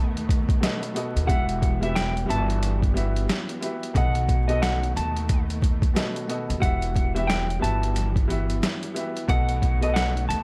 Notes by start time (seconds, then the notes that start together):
Already playing: D#2 B2 D#3 A3 B3 F#4 A4 D#5 A5
0.17 closed hi-hat
0.29 kick, closed hi-hat
0.49 kick, closed hi-hat
0.60 B2 B3 F#4 A4 D#5, snare, closed hi-hat
0.83 closed hi-hat
0.94 B2 B3 F#4 A4 D#5, closed hi-hat
1.16 D#2, closed hi-hat
1.27 E1 E3 G3 B3 F#4 G4 E5 F#5, kick, closed hi-hat
1.49 closed hi-hat
1.62 kick, closed hi-hat
1.81 E3 B3 F#4 G4 E5, closed hi-hat
1.95 G5, snare, closed hi-hat
2.17 closed hi-hat
2.26 G1 E3 B3 F#4 G4 E5 A5
2.30 closed hi-hat
2.50 closed hi-hat
2.63 closed hi-hat
2.82 kick, closed hi-hat
2.94 E3 B3 F#4 G4 E5, closed hi-hat
3.16 closed hi-hat
3.29 snare, closed hi-hat
3.49 closed hi-hat
3.61 E3 B3 F#4 G4 E5, closed hi-hat
3.83 closed hi-hat
3.94 B1 B2 D#3 A3 B3 F#4 A4 D#5 F#5, kick, closed hi-hat
4.15 closed hi-hat
4.29 kick, closed hi-hat
4.47 B2 B3 F#4 A4 D#5, closed hi-hat
4.62 F#5, snare, closed hi-hat
4.83 closed hi-hat
4.96 D#2 A5, closed hi-hat
5.16 closed hi-hat
5.29 kick, closed hi-hat
5.50 closed hi-hat
5.62 kick, closed hi-hat
5.82 kick, closed hi-hat
5.94 B2 B3 F#4 A4 D#5, snare, closed hi-hat
6.16 closed hi-hat
6.28 B2 B3 F#4 A4 D#5, closed hi-hat
6.50 D#2, closed hi-hat
6.60 E1 E3 G3 B3 F#4 G4 E5 F#5, kick, closed hi-hat
6.82 closed hi-hat
6.96 kick, closed hi-hat
7.15 E3 B3 F#4 G4 E5, closed hi-hat
7.27 G5, snare, closed hi-hat
7.50 closed hi-hat
7.60 G1 E3 B3 F#4 G4 E5 A5
7.64 closed hi-hat
7.83 closed hi-hat
7.96 closed hi-hat
8.16 kick, closed hi-hat
8.28 E3 B3 F#4 G4 E5, closed hi-hat
8.50 closed hi-hat
8.63 snare, closed hi-hat
8.83 closed hi-hat
8.95 E3 B3 F#4 G4 E5, closed hi-hat
9.17 closed hi-hat
9.28 B1 B2 D#3 A3 B3 F#4 A4 D#5 F#5, kick, closed hi-hat
9.49 closed hi-hat
9.62 kick, closed hi-hat
9.81 B2 B3 F#4 A4 D#5, closed hi-hat
9.94 F#5, snare, closed hi-hat
10.17 closed hi-hat
10.29 D#2 A5, closed hi-hat